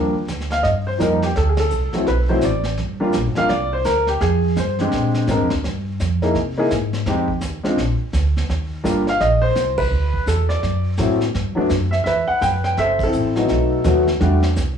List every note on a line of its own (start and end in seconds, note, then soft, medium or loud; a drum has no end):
0.00 0.28 D#2 medium
0.00 0.12 F3 soft
0.00 0.13 G3 soft
0.00 0.13 A#3 soft
0.00 0.13 D4 medium
0.28 0.63 D2 medium
0.28 snare medium
0.28 hi-hat pedal soft
0.40 snare soft
0.50 0.64 F5 medium
0.50 snare soft
0.52 snare soft
0.63 0.99 G2 medium
0.63 0.68 D#5 medium
0.63 brush sweep soft
0.63 snare soft
0.87 0.92 C5 medium
0.98 1.34 F2 medium
0.98 1.19 F3 medium
0.98 1.19 G3 medium
0.98 1.20 A#3 medium
0.98 1.20 D#4 medium
0.98 1.07 A#4 medium
0.98 snare soft
0.98 hi-hat pedal soft
1.22 1.36 G4 medium
1.22 snare soft
1.36 1.70 D2 medium
1.36 1.42 A4 medium
1.36 brush sweep soft
1.36 snare soft
1.49 1.58 G#4 medium
1.57 2.09 A4 medium
1.57 snare medium
1.57 ride medium
1.70 1.92 C2 medium
1.70 hi-hat pedal soft
1.93 2.06 F#3 medium
1.93 2.06 A3 soft
1.93 2.06 C4 soft
1.93 2.06 E4 medium
1.93 muted upright bass stroke soft
1.93 snare soft
2.07 2.42 B1 medium
2.07 2.30 B4 medium
2.07 brush sweep soft
2.07 snare soft
2.29 2.41 F#3 medium
2.29 2.41 A3 medium
2.29 2.42 C4 medium
2.29 2.42 E4 medium
2.29 2.43 C5 medium
2.41 2.77 A1 medium
2.41 2.71 D5 medium
2.41 snare soft
2.41 hi-hat pedal medium
2.64 snare soft
2.78 3.13 G1 medium
2.78 brush sweep soft
2.78 snare soft
3.00 3.12 G3 medium
3.00 3.12 A#3 medium
3.00 3.12 D4 medium
3.00 3.13 F4 medium
3.12 3.27 A#1 medium
3.12 snare soft
3.12 hi-hat pedal soft
3.27 3.38 G1 medium
3.35 3.49 F1 medium
3.35 3.48 G3 medium
3.35 3.48 A#3 soft
3.35 3.49 D4 medium
3.35 3.49 F4 medium
3.35 3.49 F5 loud
3.35 snare soft
3.49 3.85 C2 medium
3.49 3.70 D5 medium
3.49 brush sweep soft
3.49 snare soft
3.73 3.86 C5 medium
3.85 4.20 D2 medium
3.85 4.06 A#4 medium
3.85 snare soft
3.85 hi-hat pedal medium
4.07 4.22 G4 medium
4.07 snare soft
4.21 4.55 F2 medium
4.21 4.54 G#4 medium
4.21 brush sweep soft
4.21 snare soft
4.56 4.91 G2 medium
4.56 5.25 C5 medium
4.56 snare medium
4.56 hi-hat pedal soft
4.79 5.26 G#3 medium
4.79 5.26 C4 medium
4.79 5.26 D4 medium
4.79 5.26 G4 medium
4.79 snare soft
4.92 5.27 A#2 medium
4.92 brush sweep soft
4.92 snare soft
5.14 snare soft
5.27 5.40 G#2 medium
5.27 5.48 G#3 medium
5.27 5.48 C4 medium
5.27 5.48 D4 medium
5.27 5.49 A#4 medium
5.27 snare soft
5.27 hi-hat pedal medium
5.40 5.52 F2 soft
5.50 5.63 D2 medium
5.50 snare soft
5.64 5.99 G2 medium
5.64 brush sweep soft
5.64 snare soft
6.00 6.34 F2 medium
6.00 snare medium
6.00 hi-hat pedal soft
6.22 6.34 A#3 medium
6.22 6.34 D#4 medium
6.22 6.34 E4 soft
6.22 6.35 G#4 medium
6.22 snare soft
6.35 6.69 C3 medium
6.35 brush sweep soft
6.35 snare soft
6.57 6.69 A#3 medium
6.57 6.70 D#4 medium
6.57 6.70 E4 medium
6.57 6.70 G#4 medium
6.70 7.05 G#2 medium
6.70 snare soft
6.70 hi-hat pedal soft
6.93 snare soft
7.06 7.41 F2 medium
7.06 7.26 G#3 medium
7.06 7.27 C4 medium
7.06 7.27 D#4 medium
7.06 7.27 G4 medium
7.06 brush sweep soft
7.06 snare soft
7.28 kick soft
7.41 7.63 D#2 medium
7.41 snare medium
7.41 hi-hat pedal medium
7.63 7.76 G#3 medium
7.63 7.76 C4 medium
7.63 7.77 D4 medium
7.63 7.77 F4 medium
7.63 muted upright bass stroke soft
7.63 snare soft
7.77 7.98 A#1 medium
7.77 brush sweep soft
7.77 snare soft
8.00 muted upright bass stroke soft
8.13 8.48 D2 medium
8.13 snare medium
8.13 hi-hat pedal soft
8.37 snare soft
8.49 8.84 D#2 medium
8.49 brush sweep soft
8.49 snare soft
8.84 9.19 G1 medium
8.84 9.04 G3 medium
8.84 9.04 A#3 medium
8.84 9.05 D4 medium
8.84 9.05 F4 medium
8.84 snare medium
8.84 hi-hat pedal medium
9.07 9.22 F5 medium
9.07 snare soft
9.20 9.55 A#1 medium
9.20 9.41 D#5 medium
9.20 brush sweep soft
9.20 snare soft
9.42 9.79 C5 loud
9.55 9.90 C2 medium
9.55 snare medium
9.55 hi-hat pedal medium
9.77 10.24 B4 medium
9.77 kick medium
9.77 ride medium
9.91 10.26 D2 medium
9.91 brush sweep soft
10.14 kick soft
10.26 10.62 E2 medium
10.26 10.51 A4 medium
10.26 snare medium
10.26 hi-hat pedal medium
10.49 11.17 D5 medium
10.49 snare soft
10.62 10.98 F#2 medium
10.62 brush sweep soft
10.62 snare soft
10.97 11.33 A2 medium
10.97 11.19 F#3 medium
10.97 11.19 A3 medium
10.97 11.19 C4 medium
10.97 11.19 E4 medium
10.97 snare soft
10.97 hi-hat pedal soft
11.21 snare soft
11.35 11.55 G2 medium
11.35 brush sweep soft
11.35 snare soft
11.55 11.68 F#3 medium
11.55 11.69 A3 medium
11.55 11.69 B3 medium
11.55 11.69 D4 medium
11.55 muted upright bass stroke soft
11.69 12.05 F#2 medium
11.69 snare medium
11.69 hi-hat pedal soft
11.91 11.96 E5 medium
11.91 snare soft
12.04 12.27 E2 medium
12.04 12.74 B4 medium
12.04 12.26 E5 medium
12.04 brush sweep soft
12.04 snare soft
12.28 12.41 F#5 medium
12.28 muted upright bass stroke soft
12.41 12.76 F#2 medium
12.41 12.47 G5 loud
12.41 snare medium
12.41 hi-hat pedal medium
12.64 12.77 G5 medium
12.64 snare soft
12.77 13.12 F#1 medium
12.77 13.02 A4 medium
12.77 13.46 C5 medium
12.77 13.01 E5 loud
12.77 brush sweep soft
12.77 snare soft
12.99 kick medium
12.99 crash medium
13.03 13.49 C4 medium
13.03 13.49 E4 medium
13.03 14.05 A4 medium
13.13 13.48 A1 medium
13.13 hi-hat pedal soft
13.36 13.82 F#3 medium
13.36 13.83 A3 soft
13.36 13.83 B3 soft
13.36 13.83 D#4 medium
13.36 snare soft
13.48 13.84 B1 medium
13.48 brush sweep soft
13.48 snare soft
13.84 14.19 D#2 medium
13.84 14.05 F#3 medium
13.84 14.05 A3 medium
13.84 14.05 B3 medium
13.84 14.06 F#4 medium
13.84 snare medium
13.84 hi-hat pedal medium
14.07 snare soft
14.20 14.55 E2 medium
14.20 14.40 G3 medium
14.20 14.41 A3 soft
14.20 14.41 D4 medium
14.20 14.41 F#4 medium
14.20 brush sweep soft
14.20 snare soft
14.43 snare soft
14.56 14.78 C2 medium
14.56 snare medium
14.56 hi-hat pedal medium